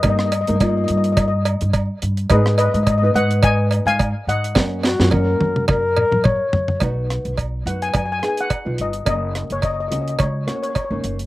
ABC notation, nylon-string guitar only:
X:1
M:4/4
L:1/16
Q:"Swing 16ths" 1/4=106
K:F#
V:1 name="Nylon-string guitar"
[A,D=G]2 z [A,DA] [A,DE]4- [A,DE] z6 z | [B,DG]3 z2 [B,DB] [B,DB]4- [B,DB] z4 z | [A,CF]2 z [A,CE] [A,CF]4- [A,CF] z6 z | [B,DF]4 z2 [B,DF]2 z2 [B,DG]2 z [B,DE]2 z |
[A,CF]4 z2 [A,CF]2 z2 [A,CF]2 z [A,CD]2 z |]